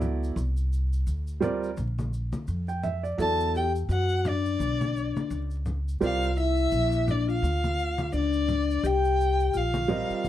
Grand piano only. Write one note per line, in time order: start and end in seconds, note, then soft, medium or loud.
0.00 0.36 F#3 medium
0.00 0.36 B3 medium
0.00 0.37 E4 medium
0.00 0.37 A4 medium
0.00 0.37 D5 medium
1.40 1.68 G3 medium
1.40 1.68 C4 medium
1.40 1.69 F4 medium
1.40 1.69 A#4 medium
1.40 1.69 D5 medium
2.68 2.83 G5 medium
2.83 3.03 E5 medium
3.03 3.19 D5 medium
3.17 3.62 F#3 medium
3.17 3.62 B3 soft
3.17 3.62 E4 soft
3.17 3.63 A4 medium
3.17 3.63 D5 medium
6.00 6.27 G3 medium
6.00 6.28 C4 medium
6.00 6.28 F4 medium
6.00 6.28 A#4 medium
6.00 6.29 D5 medium
9.88 10.29 G3 medium
9.88 10.29 C4 medium
9.88 10.29 F4 medium
9.88 10.29 A#4 medium
9.88 10.29 D#5 medium